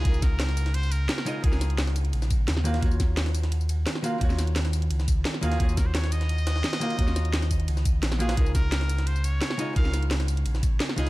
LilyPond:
<<
  \new Staff \with { instrumentName = "Muted trumpet" } { \time 4/4 \key des \major \tempo 4 = 173 aes'8 bes'4. c''8 bes'4. | aes'4 r2. | r1 | r2. r8 aes'8~ |
aes'8 bes'16 c''16 des''8 ees''2~ ees''8~ | ees''2. r8 aes'8~ | aes'8 bes'4. c''8 des''4. | f''4 r2 r8 aes'8 | }
  \new Staff \with { instrumentName = "Hollow-body jazz guitar" } { \time 4/4 \key des \major <des aes ees' f' bes'>2.~ <des aes ees' f' bes'>8 <des aes ees' f' ees''>8 | <des aes ees' f' bes'>2.~ <des aes ees' f' bes'>8 <ees bes f' ges' f''>8 | <ees bes f' ges' des''>2.~ <ees bes f' ges' des''>8 <ees bes f' ges' f''>8 | <ees bes f' ges' des''>2.~ <ees bes f' ges' des''>8 <ees bes f' ges' f''>8 |
<ees bes f' ges' des''>2.~ <ees bes f' ges' des''>8 <ees bes f' ges' f''>8 | <ees bes f' ges' des''>2.~ <ees bes f' ges' des''>8 <ees bes f' ges' f''>8 | <des aes ees' f' bes'>2.~ <des aes ees' f' bes'>8 <des aes ees' f' ees''>8 | <des aes ees' f' bes'>2.~ <des aes ees' f' bes'>8 <des aes ees' f' ees''>8 | }
  \new Staff \with { instrumentName = "Sub bass" } { \clef bass \time 4/4 \key des \major des,2. r4 | des,2 bes,,4 ees,4 | ees,2. r4 | ees,2 des,4 r8 ees,8 |
ees,2. r4 | ees,2 des,4 bes,,4 | des,2. r4 | des,2 bes,,4 r8 des,8 | }
  \new DrumStaff \with { instrumentName = "Drums" } \drummode { \time 4/4 <hh bd cymr>16 tamb16 <hh bd cymr sn tamb>8 <hh cymr sn>16 <hh sn>16 <hh cymr tamb>16 <hh sn>16 <hh cymr>16 tamb16 <hh cymr tamb>8 <hh cymr sn>16 sn16 <hh cymr tamb>8 | <hh bd cymr>16 <sn tamb>16 <hh cymr sn tamb>16 hh16 <hh cymr sn>16 <hh sn tamb>16 <hh cymr tamb>16 hh16 <hh cymr>16 <sn tamb>16 <hh bd cymr tamb>8 <hh cymr sn>16 sn16 <hh cymr tamb>16 <hh sn>16 | <hh bd cymr>16 tamb16 <hh bd cymr sn tamb>8 <hh cymr sn>16 <hh sn>16 <hh cymr tamb>16 <hh sn>16 <hh cymr>16 tamb16 <hh cymr tamb>8 <hh cymr sn>16 sn16 <hh cymr tamb>8 | <hh bd cymr>16 <sn tamb>16 <hh cymr sn tamb>16 hh16 <hh cymr sn>16 <hh sn tamb>16 <hh cymr tamb>16 hh16 <hh cymr>16 <sn tamb>16 <hh bd cymr tamb>8 <hh cymr sn>16 sn16 <hh cymr tamb>16 <hh sn>16 |
<hh bd cymr>16 tamb16 <hh bd cymr sn tamb>8 <hh cymr sn>16 <hh sn>16 <hh cymr tamb>16 <hh sn>16 <hh cymr>16 tamb16 <hh cymr sn tamb>16 sn16 <hh cymr sn>16 <cymr sn>16 <hh sn tamb>16 cymr16 | <hh bd cymr>16 <sn tamb>16 <hh cymr sn tamb>16 hh16 <hh cymr sn>16 <hh sn tamb>16 <hh bd cymr tamb>16 hh16 <hh cymr>16 <sn tamb>16 <hh bd cymr tamb>8 <hh cymr sn>16 <sn tamb>16 <hh cymr tamb>16 <hh cymr sn>16 | <hh bd cymr>16 tamb16 <hh bd cymr sn tamb>8 <hh cymr sn>16 <hh sn>16 <hh cymr tamb>16 <hh sn>16 <hh cymr>16 tamb16 <hh cymr tamb>8 <hh cymr sn>16 sn16 <hh cymr tamb>8 | <hh bd cymr>16 <sn tamb>16 <hh cymr sn tamb>16 hh16 <hh cymr sn>16 <hh sn tamb>16 <hh cymr tamb>16 hh16 <hh cymr>16 <sn tamb>16 <hh bd cymr tamb>8 <hh cymr sn>16 sn16 <hh cymr tamb>8 | }
>>